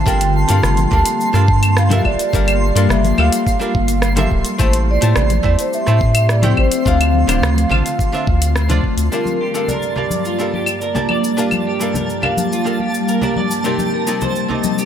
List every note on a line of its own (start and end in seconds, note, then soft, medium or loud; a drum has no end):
0.00 4.56 F4 loud
0.00 9.14 C6 medium
0.06 0.46 G1 loud
0.06 0.45 G3 medium
0.06 4.56 G3 medium
0.06 4.55 A#3 medium
0.06 0.46 D4 medium
0.06 0.46 A4 medium
0.06 0.46 A#4 medium
0.06 0.46 F5 loud
0.06 0.36 G5 loud
0.06 4.55 A5 medium
0.06 kick loud
0.06 shaker medium
0.21 closed hi-hat soft
0.21 shaker soft
0.36 0.91 A5 loud
0.48 0.61 G2 medium
0.48 0.88 G3 medium
0.48 0.88 D4 medium
0.48 0.88 A4 medium
0.48 0.88 A#4 medium
0.48 0.89 F5 medium
0.48 closed hi-hat medium
0.48 high bongo medium
0.48 shaker medium
0.63 0.87 G1 medium
0.63 cross-stick medium
0.63 low conga medium
0.63 shaker medium
0.77 closed hi-hat soft
0.77 high conga medium
0.77 shaker soft
0.91 1.04 D2 loud
0.91 1.30 G3 medium
0.91 1.31 D4 medium
0.91 1.31 A4 medium
0.91 1.31 A#4 medium
0.91 1.31 F5 medium
0.91 1.73 A5 loud
0.91 kick loud
1.05 closed hi-hat medium
1.05 shaker medium
1.21 shaker medium
1.33 2.01 G2 loud
1.33 1.46 G3 medium
1.33 1.46 D4 medium
1.33 1.47 A4 medium
1.33 1.47 A#4 medium
1.33 1.47 F5 medium
1.33 cross-stick soft
1.33 shaker soft
1.48 kick loud
1.63 closed hi-hat medium
1.63 claves medium
1.63 shaker medium
1.77 1.99 F5 medium
1.77 cross-stick medium
1.77 shaker medium
1.90 2.29 G3 medium
1.90 2.30 D4 medium
1.90 2.30 A4 medium
1.90 2.30 A#4 medium
1.90 2.31 E5 medium
1.90 closed hi-hat soft
1.90 high conga medium
1.90 low conga medium
1.90 shaker soft
1.99 2.06 E5 medium
2.04 2.17 G1 loud
2.04 2.93 D5 loud
2.04 kick medium
2.04 high bongo medium
2.04 claves medium
2.19 closed hi-hat soft
2.19 shaker medium
2.33 2.72 G1 loud
2.33 2.72 G3 medium
2.33 2.73 D4 medium
2.33 2.73 A4 medium
2.33 2.73 A#4 medium
2.33 2.73 F5 loud
2.33 kick loud
2.33 shaker medium
2.48 closed hi-hat soft
2.48 claves medium
2.48 shaker soft
2.75 2.87 G2 medium
2.75 3.15 G3 medium
2.75 3.15 D4 medium
2.75 3.15 A4 medium
2.75 3.15 A#4 medium
2.75 3.15 F5 medium
2.75 closed hi-hat medium
2.75 high bongo medium
2.75 shaker medium
2.89 3.14 G1 medium
2.89 3.19 E5 medium
2.89 cross-stick medium
2.89 low conga medium
2.89 shaker medium
3.04 closed hi-hat soft
3.04 high conga medium
3.04 shaker soft
3.18 3.30 D2 medium
3.18 3.57 G3 medium
3.18 3.57 D4 medium
3.18 3.58 A4 medium
3.18 3.58 A#4 medium
3.18 4.28 F5 medium
3.18 3.58 F5 medium
3.18 claves medium
3.32 closed hi-hat medium
3.32 shaker medium
3.47 kick medium
3.47 shaker soft
3.59 3.72 G3 medium
3.59 3.73 D4 medium
3.59 3.73 A4 medium
3.59 3.73 A#4 medium
3.59 3.73 F5 medium
3.59 high bongo soft
3.59 shaker soft
3.75 4.28 G1 medium
3.75 kick medium
3.88 closed hi-hat medium
3.88 shaker medium
4.02 cross-stick medium
4.02 shaker medium
4.16 4.56 G3 medium
4.16 4.56 D4 medium
4.16 4.56 A4 medium
4.16 4.56 A#4 medium
4.16 4.57 E5 medium
4.16 closed hi-hat soft
4.16 high conga medium
4.16 low conga medium
4.16 shaker soft
4.31 4.43 D1 medium
4.31 kick medium
4.45 closed hi-hat medium
4.45 shaker medium
4.58 4.99 A1 loud
4.58 4.98 A3 medium
4.58 6.84 A3 medium
4.58 9.08 C4 medium
4.58 4.98 E4 medium
4.58 4.99 G4 medium
4.58 6.84 G4 medium
4.58 4.99 C5 medium
4.58 4.99 A5 medium
4.58 kick loud
4.58 shaker medium
4.63 4.75 C5 medium
4.73 closed hi-hat soft
4.73 shaker soft
4.91 5.45 D5 medium
5.01 5.14 A2 medium
5.01 5.41 A3 medium
5.01 5.41 E4 medium
5.01 5.41 G4 medium
5.01 5.41 C5 medium
5.01 5.42 A5 medium
5.01 closed hi-hat medium
5.01 high bongo medium
5.01 shaker medium
5.16 5.40 A1 medium
5.16 cross-stick loud
5.16 low conga medium
5.16 shaker soft
5.30 closed hi-hat soft
5.30 high conga medium
5.30 shaker soft
5.43 5.56 E2 loud
5.43 5.83 A3 medium
5.43 5.83 E4 medium
5.43 5.83 G4 medium
5.43 5.84 C5 medium
5.43 5.59 D5 medium
5.43 5.84 A5 medium
5.43 kick medium
5.59 5.73 C5 medium
5.59 closed hi-hat medium
5.59 shaker medium
5.73 6.16 E5 loud
5.73 shaker medium
5.86 6.54 A2 loud
5.86 5.99 A3 medium
5.86 5.99 E4 medium
5.86 6.00 G4 medium
5.86 6.00 C5 medium
5.86 6.00 A5 medium
5.86 cross-stick soft
5.86 shaker soft
6.01 kick medium
6.15 6.31 E5 loud
6.15 closed hi-hat medium
6.15 claves medium
6.15 shaker medium
6.29 6.59 D5 medium
6.29 cross-stick medium
6.29 shaker soft
6.42 6.82 A3 medium
6.42 6.82 E4 medium
6.42 6.83 G4 medium
6.42 6.83 C5 medium
6.42 6.83 G5 medium
6.42 closed hi-hat soft
6.42 high conga medium
6.42 low conga medium
6.42 shaker soft
6.57 6.70 A1 loud
6.57 6.85 C5 loud
6.57 kick medium
6.57 high bongo medium
6.57 claves medium
6.71 closed hi-hat medium
6.71 shaker medium
6.85 7.25 D2 loud
6.85 9.10 D3 medium
6.85 7.25 D3 medium
6.85 9.10 A3 medium
6.85 7.25 D4 medium
6.85 9.09 F4 loud
6.85 7.25 F4 medium
6.85 7.26 C5 medium
6.85 8.53 F5 loud
6.85 7.26 F5 loud
6.85 kick loud
6.85 shaker medium
7.01 closed hi-hat soft
7.01 claves medium
7.01 shaker soft
7.14 high conga medium
7.27 7.40 D1 medium
7.27 7.67 D3 medium
7.27 7.67 D4 medium
7.27 7.67 F4 medium
7.27 7.68 C5 medium
7.27 7.68 F5 medium
7.27 cross-stick soft
7.27 closed hi-hat medium
7.27 high bongo medium
7.27 claves medium
7.27 shaker medium
7.42 7.66 D2 medium
7.42 cross-stick loud
7.42 low conga medium
7.42 shaker medium
7.56 closed hi-hat soft
7.56 high conga medium
7.56 shaker soft
7.69 7.83 A1 loud
7.69 8.09 D3 medium
7.69 8.09 D4 medium
7.69 8.10 F4 medium
7.69 8.10 C5 medium
7.69 8.10 F5 medium
7.69 low conga medium
7.69 claves medium
7.86 closed hi-hat medium
7.86 shaker medium
7.99 kick medium
7.99 shaker medium
8.12 8.25 D3 medium
8.12 8.26 D4 medium
8.12 8.26 F4 medium
8.12 8.26 C5 medium
8.12 8.26 E5 medium
8.12 high bongo soft
8.12 shaker soft
8.27 8.81 D2 medium
8.27 kick loud
8.42 closed hi-hat medium
8.42 shaker medium
8.56 cross-stick medium
8.56 shaker soft
8.69 9.09 D3 medium
8.69 9.09 D4 medium
8.69 9.09 F4 medium
8.69 9.09 C5 medium
8.69 9.09 D5 medium
8.69 closed hi-hat soft
8.69 high bongo soft
8.69 high conga medium
8.69 low conga medium
8.69 shaker soft
8.84 kick medium
8.97 9.10 D2 medium
8.97 closed hi-hat medium
8.97 shaker medium
9.10 13.60 G2 medium
9.10 14.85 G3 medium
9.10 9.51 G3 medium
9.10 14.85 A#3 medium
9.10 9.51 D4 medium
9.10 11.36 F4 medium
9.10 9.38 F4 medium
9.10 9.52 A#4 medium
9.10 9.71 A#4 medium
9.10 9.52 F5 medium
9.10 14.85 A5 medium
9.10 9.52 A5 medium
9.10 shaker soft
9.26 high conga medium
9.26 shaker soft
9.41 9.66 G4 medium
9.54 9.93 G3 medium
9.54 9.94 D4 medium
9.54 9.94 A4 medium
9.54 9.94 A#4 medium
9.54 9.94 F5 medium
9.54 high bongo medium
9.54 shaker medium
9.68 9.96 A#4 medium
9.68 10.79 D5 medium
9.68 high conga soft
9.68 low conga medium
9.68 shaker soft
9.82 shaker soft
9.95 10.35 G3 medium
9.95 10.36 D4 medium
9.95 10.36 A#4 medium
9.95 10.24 D5 medium
9.95 10.37 F5 medium
9.95 10.36 A5 soft
9.95 low conga medium
10.11 high conga medium
10.11 shaker medium
10.25 10.52 F4 medium
10.25 shaker soft
10.39 10.52 G3 medium
10.39 10.52 D4 medium
10.39 10.52 A4 medium
10.39 10.52 A#4 medium
10.39 10.53 F5 medium
10.39 shaker soft
10.54 10.79 G4 medium
10.54 high conga medium
10.66 claves medium
10.66 shaker medium
10.80 11.09 A#4 medium
10.80 12.27 D5 medium
10.80 shaker soft
10.95 11.35 G3 medium
10.95 11.35 D4 medium
10.95 11.35 A#4 medium
10.95 11.36 D5 medium
10.95 11.35 A5 medium
10.95 low conga medium
10.95 shaker soft
11.09 11.26 D5 medium
11.09 high bongo soft
11.09 high conga medium
11.09 claves medium
11.24 shaker medium
11.37 11.77 G3 medium
11.37 11.77 D4 medium
11.37 11.64 F4 medium
11.37 13.63 G4 medium
11.37 11.78 A#4 medium
11.37 11.78 F5 medium
11.37 11.78 A5 medium
11.37 shaker soft
11.51 high conga medium
11.51 claves medium
11.51 shaker soft
11.67 11.92 G4 medium
11.79 12.19 G3 medium
11.79 12.20 D4 medium
11.79 12.20 A4 soft
11.79 12.20 A#4 medium
11.79 12.21 F5 medium
11.79 high bongo soft
11.79 shaker medium
11.94 12.11 A#4 medium
11.94 high conga medium
11.94 low conga medium
11.94 shaker soft
12.10 shaker soft
12.22 12.62 G3 medium
12.22 12.62 D4 medium
12.22 12.63 A#4 medium
12.22 12.51 D5 medium
12.22 13.32 F5 medium
12.22 12.63 F5 medium
12.22 12.63 A5 medium
12.22 low conga medium
12.22 claves medium
12.37 high conga medium
12.37 shaker medium
12.52 12.79 F4 medium
12.52 shaker soft
12.64 12.78 G3 medium
12.64 12.78 D4 medium
12.64 12.78 A4 medium
12.64 12.79 A#4 medium
12.64 12.79 F5 medium
12.64 high bongo soft
12.64 shaker soft
12.80 13.06 G4 medium
12.80 high conga medium
12.94 shaker medium
13.08 13.36 A#4 medium
13.08 shaker soft
13.21 13.61 G3 medium
13.21 13.61 D4 medium
13.21 13.62 A#4 medium
13.21 13.62 D5 medium
13.21 13.62 A5 medium
13.21 low conga medium
13.21 shaker soft
13.36 13.63 D5 medium
13.36 high conga medium
13.51 shaker medium
13.64 14.04 C3 medium
13.64 14.85 C3 medium
13.64 14.04 C4 medium
13.64 14.04 D#4 medium
13.64 14.85 D#4 loud
13.64 13.91 G4 medium
13.64 14.04 A#4 medium
13.64 14.04 D5 medium
13.64 shaker medium
13.79 high conga medium
13.79 shaker soft
13.94 14.19 A#4 medium
14.07 14.46 C3 medium
14.07 14.46 C4 medium
14.07 14.47 D#4 medium
14.07 14.47 A#4 medium
14.07 14.47 D5 medium
14.07 high bongo medium
14.07 shaker medium
14.21 14.49 C5 medium
14.21 high conga medium
14.21 low conga medium
14.21 shaker soft
14.36 shaker soft
14.48 14.85 C3 medium
14.48 14.85 C4 medium
14.48 14.85 D#4 medium
14.48 14.85 A#4 medium
14.48 14.77 D#5 medium
14.48 14.85 D6 medium
14.48 low conga medium
14.64 high conga medium
14.64 shaker medium
14.78 14.85 G4 medium
14.78 shaker medium